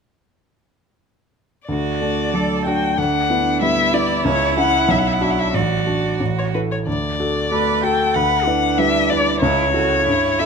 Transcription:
1.68 2.00 D2 soft
1.68 2.36 F#4 soft
1.68 2.61 D5 soft
2.01 2.30 A3 soft
2.01 2.30 D4 soft
2.33 2.62 F#3 soft
2.33 2.63 A3 soft
2.33 2.63 D4 soft
2.33 2.69 A4 soft
2.65 2.95 A3 soft
2.65 2.95 D4 soft
2.65 2.98 F#4 soft
2.65 2.99 G5 medium
2.97 3.29 D2 soft
2.97 3.63 D4 soft
2.97 3.61 F#5 medium
3.30 3.58 B3 soft
3.30 3.59 E4 soft
3.62 3.90 G3 soft
3.62 3.91 B3 soft
3.62 5.54 E4 medium
3.62 3.91 E4 soft
3.62 3.95 E5 medium
3.93 4.22 B3 soft
3.93 4.22 E4 soft
3.93 4.25 D5 medium
4.25 4.56 C#2 soft
4.25 4.57 C#5 medium
4.57 4.86 C#4 soft
4.57 4.86 E4 soft
4.57 4.92 F#5 medium
4.88 5.20 B1 medium
4.88 5.00 E5 soft
4.99 5.09 F#5 soft
5.07 5.15 E5 soft
5.13 5.23 F#5 soft
5.21 5.50 D4 soft
5.21 5.50 F#4 soft
5.21 5.32 E5 soft
5.30 5.40 F#5 soft
5.39 5.56 E5 soft
5.54 5.86 A1 soft
5.54 6.52 F#4 soft
5.54 6.20 D5 medium
5.86 6.16 D4 soft
5.86 6.17 F#4 soft
6.20 6.53 A1 soft
6.39 6.45 C#5 soft
6.54 6.84 E4 soft
6.54 6.84 A4 soft
6.54 6.61 B4 soft
6.71 6.78 C#5 soft
6.87 7.18 D2 soft
6.87 7.82 D5 medium
7.20 7.48 F#4 soft
7.20 7.49 A4 soft
7.51 7.80 A3 soft
7.51 7.80 F#4 soft
7.51 7.80 A4 soft
7.51 7.85 B4 soft
7.83 8.12 F#4 soft
7.83 8.12 A4 soft
7.83 8.17 A4 soft
7.83 8.16 G5 medium
8.15 8.46 D2 soft
8.15 8.49 B4 medium
8.15 8.80 F#5 medium
8.47 9.41 D4 soft
8.47 8.75 E4 soft
8.47 8.75 B4 soft
8.78 9.07 G3 soft
8.78 9.07 E4 soft
8.78 9.07 B4 soft
8.78 9.11 E5 medium
9.10 9.39 E4 soft
9.10 9.39 B4 soft
9.10 9.40 D5 medium
9.41 9.73 C#2 soft
9.41 9.73 E4 medium
9.41 10.40 C#5 medium
9.74 10.03 E4 soft
9.74 10.06 F#4 soft
9.74 10.03 A4 soft
10.06 10.38 G2 soft
10.06 10.46 E4 soft
10.39 10.46 E4 soft
10.39 10.46 A4 soft
10.39 10.46 E5 medium

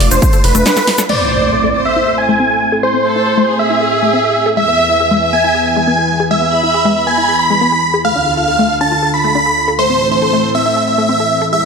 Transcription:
0.00 0.09 F1 medium
0.00 1.07 A3 medium
0.00 1.07 D4 medium
0.00 1.07 F4 medium
0.00 open hi-hat loud
0.11 0.20 F1 medium
0.11 0.19 D4 medium
0.11 0.40 C5 loud
0.11 closed hi-hat medium
0.11 cabasa medium
0.22 0.25 F4 medium
0.22 kick loud
0.22 closed hi-hat medium
0.22 cabasa medium
0.33 0.38 A4 medium
0.33 closed hi-hat soft
0.33 cabasa soft
0.44 0.53 F1 loud
0.44 1.01 B4 loud
0.44 open hi-hat loud
0.55 0.64 F1 medium
0.55 0.62 A3 loud
0.55 closed hi-hat medium
0.55 cabasa medium
0.66 0.71 D4 loud
0.66 snare loud
0.66 closed hi-hat medium
0.66 cabasa medium
0.77 0.84 A4 medium
0.77 snare medium
0.77 closed hi-hat soft
0.77 cabasa soft
0.87 snare medium
0.87 open hi-hat loud
0.98 1.03 A4 loud
0.98 snare medium
0.98 closed hi-hat medium
0.98 cabasa medium
1.09 4.53 A2 medium
1.09 4.53 A3 medium
1.09 1.17 A3 medium
1.09 4.53 C4 medium
1.09 4.54 E4 medium
1.09 1.66 C5 medium
1.09 1.38 D5 loud
1.09 crash medium
1.09 impact medium
1.20 1.23 C4 medium
1.42 1.47 E4 medium
1.42 1.80 D5 loud
1.53 1.56 A4 medium
1.64 1.71 A3 loud
1.74 2.31 C5 medium
1.85 1.93 C4 medium
1.85 2.14 E5 medium
1.96 1.99 E4 medium
2.07 2.12 A4 medium
2.18 2.74 G#5 loud
2.29 2.36 A3 loud
2.40 2.45 C4 loud
2.51 2.58 A4 medium
2.72 2.77 A4 loud
2.83 2.91 A3 medium
2.83 3.12 C5 loud
2.94 2.97 C4 medium
3.05 3.46 A4 medium
3.16 3.21 E4 medium
3.16 3.54 C5 medium
3.27 3.30 A4 medium
3.37 3.45 A3 loud
3.48 4.48 G#4 medium
3.59 3.67 C4 medium
3.59 3.88 E5 medium
3.70 3.73 E4 medium
3.81 3.86 A4 medium
3.92 4.48 E5 loud
4.03 4.10 A3 loud
4.13 4.18 C4 medium
4.24 4.32 A4 medium
4.46 4.51 A4 loud
4.57 8.01 E2 medium
4.57 8.01 E3 medium
4.57 4.64 G#3 medium
4.57 8.01 B3 medium
4.57 8.01 G#4 medium
4.57 5.13 E5 medium
4.57 4.86 E5 loud
4.68 4.71 B3 medium
4.89 4.95 E4 medium
4.89 5.28 E5 medium
5.00 5.03 G#4 medium
5.11 5.19 G#3 loud
5.22 5.79 E5 medium
5.33 5.41 B3 medium
5.33 5.62 G#5 medium
5.44 5.47 E4 medium
5.55 5.60 G#4 medium
5.66 6.22 G#5 loud
5.76 5.84 G#3 loud
5.87 5.92 B3 loud
5.98 6.06 G#4 medium
6.20 6.25 G#4 loud
6.31 6.38 G#3 medium
6.31 6.60 E5 medium
6.42 6.45 B3 medium
6.52 6.94 B5 medium
6.63 6.68 E4 medium
6.63 7.02 E5 medium
6.74 6.77 G#4 medium
6.85 6.93 G#3 loud
6.96 7.96 B5 medium
7.07 7.14 B3 medium
7.07 7.36 G#5 medium
7.18 7.21 E4 medium
7.29 7.34 G#4 medium
7.39 7.96 B5 loud
7.50 7.58 G#3 loud
7.61 7.66 B3 loud
7.72 7.80 G#4 medium
7.94 7.99 G#4 loud
8.05 9.77 D2 medium
8.05 9.77 D3 medium
8.05 8.12 A3 medium
8.05 9.77 F4 medium
8.05 9.77 A4 medium
8.05 8.33 F5 loud
8.16 8.19 D4 medium
8.37 8.42 F4 medium
8.37 8.76 F5 medium
8.48 8.51 A4 medium
8.59 8.67 A3 loud
8.81 8.88 D4 medium
8.81 9.10 A5 medium
8.92 8.95 F4 medium
9.03 9.08 A4 medium
9.14 9.70 B5 loud
9.24 9.32 A3 loud
9.35 9.40 D4 loud
9.46 9.54 A4 medium
9.68 9.73 A4 loud
9.79 11.51 A2 medium
9.79 11.65 E3 medium
9.79 9.86 A3 medium
9.79 11.51 C4 medium
9.79 11.51 A4 medium
9.79 10.07 C5 loud
9.90 9.93 C4 medium
10.11 10.16 E4 medium
10.11 10.50 C5 medium
10.22 10.25 A4 medium
10.33 10.41 A3 loud
10.55 10.62 C4 medium
10.55 10.84 E5 medium
10.66 10.69 E4 medium
10.76 10.82 A4 medium
10.87 11.44 E5 loud
10.98 11.06 A3 loud
11.09 11.14 C4 loud
11.20 11.27 A4 medium
11.42 11.47 A4 loud
11.53 11.65 E2 medium
11.53 11.60 G#3 medium
11.53 11.65 B3 medium
11.53 11.65 G#4 medium
11.53 11.65 E5 loud

